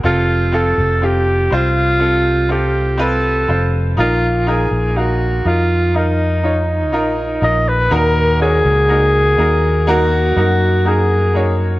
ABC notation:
X:1
M:4/4
L:1/16
Q:1/4=61
K:Bbphr
V:1 name="Alto saxophone"
F2 =A2 =G2 F4 G2 A3 z | F2 A2 G2 F2 E6 e c | B2 A6 G4 A3 z |]
V:2 name="Upright piano"
[=CF=A]2 [CFA]2 [CF=G]2 [CF=c]2 [CFA]2 [CFA]2 [CF_c]2 [=CF=c]2 | [EFB]2 [EFB]2 [EBf]2 [EFB]2 [EFB]2 [EFd]2 [EFB]2 [EFB]2 | [B,EGB]2 [B,EGd]2 [B,EGB]2 [B,EGB]2 [B,EGB]2 [B,EGB]2 [B,EGB]2 [B,EGd]2 |]
V:3 name="Upright piano" clef=bass
=C,6 z8 z2 | [B,,E,]6 z8 z2 | B,,6 z8 z2 |]
V:4 name="Fretless electric bass" clef=bass
F,,,3 F,,,3 =C,,8 F,,,2 | B,,,3 B,,,3 F,,6 B,,,2 B,,,2 | E,,3 D,,3 E,,4 G,,6 |]